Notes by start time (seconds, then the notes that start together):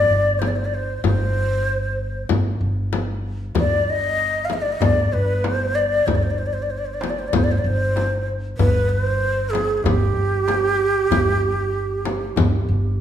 Already playing: D5
0.10 G1
0.39 C5, frame drum
0.47 D5
0.56 C5
0.65 D5
0.74 C5
1.04 G1 C5, frame drum
2.29 G1, frame drum
2.61 G1
2.93 frame drum
3.55 G1, darbuka dum, frame drum
3.59 D5
3.90 D#5
4.17 darbuka ka
4.45 F5
4.50 D#5, frame drum
4.62 D5, darbuka ka
4.72 D#5
4.80 G1 D5, darbuka dum, frame drum
5.13 G1 B4
5.44 C5, darbuka tek, frame drum
5.75 D5
6.07 G1 C5, darbuka dum, frame drum
6.15 D5
6.23 C5
6.30 D5
6.38 C5
6.46 D5
6.53 C5
6.62 D5
6.70 C5, darbuka ka
6.78 D5
6.86 C5
6.94 D5
7.01 C5, darbuka tek, frame drum
7.09 D5
7.19 C5
7.28 D5
7.33 G1 C5, darbuka dum, frame drum
7.44 D5
7.51 C5
7.58 D5
7.64 G1 C5
7.96 darbuka tek, frame drum
8.58 G1 B4, darbuka dum, frame drum
8.89 B4
9.01 C5
9.22 darbuka ka
9.50 G#4, darbuka tek
9.55 frame drum
9.70 darbuka ka
9.77 G#4
9.83 G1 G4, darbuka dum, frame drum
10.16 G1
10.48 darbuka tek, frame drum
11.11 G1, darbuka dum, frame drum
11.27 darbuka ka
11.74 darbuka ka
11.90 darbuka ka
12.05 darbuka tek, frame drum
12.22 darbuka ka
12.36 G1, darbuka dum, frame drum
12.68 G1, darbuka ka